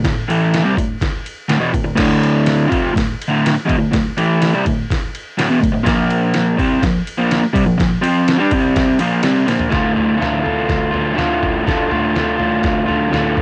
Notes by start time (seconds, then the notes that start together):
0.04 D2 A2, kick, snare, ride
0.29 A2 E3 A3, ride
0.54 snare, ride
0.64 C3 G3
0.77 D2 A2, kick, ride
1.01 kick, snare, ride
1.26 ride
1.48 D2 A2, snare, ride
1.59 E2 B2
1.73 D2 A2, kick, ride
1.84 D2 A2
1.95 D2 A2 D3, kick, snare, crash
2.23 ride
2.46 snare, ride
2.68 F2 C3 F3, kick
2.72 ride
2.93 D2 A2, kick
2.97 snare, ride
3.22 ride
3.28 D2 A2 D3
3.46 snare, ride
3.53 muted overdriven electric guitar stroke
3.66 E2 B2, kick, ride
3.78 D2 A2
3.91 D2 A2, kick, snare, ride
4.18 A2 E3 A3, ride
4.42 snare, ride
4.54 C3 G3
4.66 D2 A2, kick, ride
4.90 kick, snare, ride
5.15 ride
5.39 D2 A2, snare, ride
5.51 E2 B2
5.62 D2 A2, kick, ride
5.72 D2 A2
5.83 A#2 F3 A#3, kick, snare, ride
6.10 ride
6.34 snare, ride
6.57 C3 G3 C4, kick, ride
6.81 A#2 F3, kick, snare, ride
7.07 ride
7.18 A#2 F3 A#3
7.31 snare, ride
7.45 muted overdriven electric guitar stroke
7.53 C3 G3, kick, ride
7.66 A#2 F3
7.78 A#2 F3, kick, snare, ride
8.02 F3 C4 F4, ride
8.28 snare, ride
8.39 G3 D4
8.51 C3 G3 C4, kick, ride
8.76 kick, snare, ride
8.99 A#2 F3 A#3, ride
9.23 C3 G3 C4, snare, ride
9.47 A#2 F3 A#3, snare, ride
9.60 floor tom
9.70 D2 A2 D3 A3 F4, kick, snare, floor tom
9.94 D3 A3 F4, floor tom
10.17 A2 D3 A3 F4
10.22 snare, floor tom
10.42 D3 A3 F4
10.46 floor tom
10.69 kick, snare, floor tom
10.91 A3 F4, floor tom
10.95 D3
11.14 D2 A2 D3 A3
11.18 F4, snare, floor tom
11.43 kick, floor tom
11.65 D2 A2 D3 A3 F4, kick, snare, floor tom
11.90 D3 A3 F4, floor tom
12.16 A2 D3 A3 F4, snare, floor tom
12.37 D3 A3 F4, floor tom
12.63 kick, snare, floor tom
12.86 D3 A3 F4, floor tom
13.10 D2 A2 D3 A3, floor tom
13.14 F4, snare
13.37 kick, floor tom